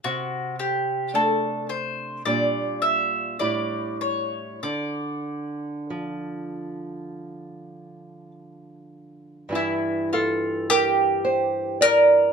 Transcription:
0.04 C3 F#4
0.59 G4
1.14 A3 D4 A4
1.69 C5
2.25 A#2 G3 D4 D5
2.82 E5
3.39 A2 G3 E4 D5
4.01 C#5
4.63 D3 D5
5.90 F3
9.49 G2 E3 E4
9.55 E4
10.13 F4 A4
10.70 G4 A#4
11.25 C5
11.81 A#4 D5

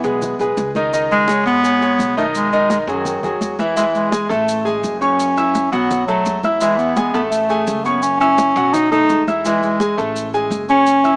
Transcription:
Already playing: B3
0.04 B1 G#3 G#4 B4, high conga, maracas
0.22 high conga, low conga, maracas
0.39 B1 G#3 G#4 B4, high conga, maracas
0.57 C#2, high conga, maracas
0.75 D#3 D#4 D#5, high conga, maracas
0.93 D#3 D#4 D#5, high conga, maracas
1.10 G#3, high conga, maracas
1.28 G#3 G#4 C#5, high conga, maracas
1.46 G#1 B3, high conga, maracas
1.63 G#3 G#4 C#5, high conga, maracas
1.81 G#3 G#4 C#5, high conga, maracas
1.99 B1, high conga, maracas
2.17 D#3 A3 D#4 D#5, high conga, maracas
2.35 G#3, high conga, maracas
2.52 D#3 D#4 D#5, high conga, maracas
2.70 G#3, high conga, maracas
2.87 F#2 D#3 F#3 F#4 G#4, high conga, maracas
3.05 high conga, low conga, maracas
3.23 F#2 F#3 F#4 G#4, high conga, low conga, maracas
3.41 E2, high conga, maracas
3.59 E3 E4 E5, high conga, maracas
3.76 E3 G#3 E4 E5, high conga, maracas
3.94 G#3, high conga, maracas
4.11 G#3 G#4 G#5, high conga, maracas
4.29 A1 A3 A4 A5, high conga, maracas
4.48 high conga, maracas
4.65 G#3 G#4 G#5, high conga, maracas
4.83 F#1, high conga, maracas
5.01 C#4 C#5 C#6, high conga, maracas
5.20 high conga, maracas
5.37 E4 E5 E6, high conga, maracas
5.55 high conga, maracas
5.72 B1 F#3 B3 F#4 F#5, high conga, maracas
5.91 high conga, low conga, maracas
6.07 F#3 A3 A4 A5, high conga, maracas
6.26 E2, high conga, maracas
6.43 E4 E5 E6, high conga, maracas
6.60 E3 G#3 E4 E5, high conga, maracas
6.77 B3, high conga, maracas
6.96 G#3 G#4 G#5, high conga, maracas
7.13 A1 A3 B3 A4 A5, high conga, maracas
7.30 A3, high conga, maracas
7.49 A3 G#4 G#5, high conga, maracas
7.67 F#1, high conga, maracas
7.84 B3 C#4 C#5 C#6, high conga, maracas
8.02 C#4, high conga, maracas
8.20 C#4 E4 E5 E6, high conga, maracas
8.38 high conga, maracas
8.56 B1 F#3 F#4 F#5, high conga, maracas
8.73 D#4, high conga, low conga, maracas
8.91 A3 D#4 A4 A5, high conga, low conga, maracas
9.09 E2, high conga, maracas
9.28 E4 E5 E6, high conga, maracas
9.44 E3 G#3 E4 E5, high conga, maracas
9.63 G#3, high conga, maracas
9.80 G#3 G#4 G#5, high conga, maracas
9.98 A1 A3 A4 A5, high conga, maracas
10.16 high conga, maracas
10.33 G#3 G#4 G#5, high conga, maracas
10.50 F#1, high conga, maracas
10.69 C#4 C#5 C#6, high conga, maracas
10.87 high conga, maracas
11.04 E4 E5 E6, high conga, maracas

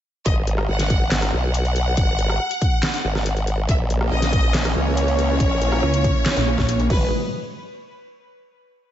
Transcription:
0.26 G#1 D#5, kick, closed hi-hat
0.47 closed hi-hat
0.58 cross-stick
0.69 G#1 F#5
0.79 snare, closed hi-hat
0.90 kick, closed hi-hat
1.11 snare, clap, closed hi-hat
1.22 cross-stick, closed hi-hat
1.33 B1 F#5
1.54 closed hi-hat
1.65 closed hi-hat
1.76 closed hi-hat
1.97 G#1, kick, closed hi-hat
2.19 closed hi-hat
2.29 cross-stick
2.51 closed hi-hat
2.62 kick, closed hi-hat
2.83 snare, clap, closed hi-hat
2.94 closed hi-hat
3.04 G#1
3.15 cross-stick, snare
3.26 closed hi-hat
3.37 closed hi-hat
3.47 closed hi-hat
3.69 A#1 E3 A#3 C#4 E5, kick, closed hi-hat
3.90 closed hi-hat
4.01 cross-stick
4.12 A#1 D#5
4.22 snare, closed hi-hat
4.33 kick, closed hi-hat
4.54 snare, clap, closed hi-hat
4.65 cross-stick, closed hi-hat
4.76 C#2 C#5
4.97 closed hi-hat
5.08 closed hi-hat
5.19 closed hi-hat
5.40 A#1, kick, closed hi-hat
5.62 closed hi-hat
5.72 cross-stick
5.83 C#2
5.94 closed hi-hat
6.04 kick, closed hi-hat
6.26 snare, clap, closed hi-hat
6.37 A#1, closed hi-hat
6.58 A#1, kick, cross-stick, snare
6.69 closed hi-hat
6.79 closed hi-hat
6.90 G#1 G#3 G#4 B4 D#5, kick, crash, zap

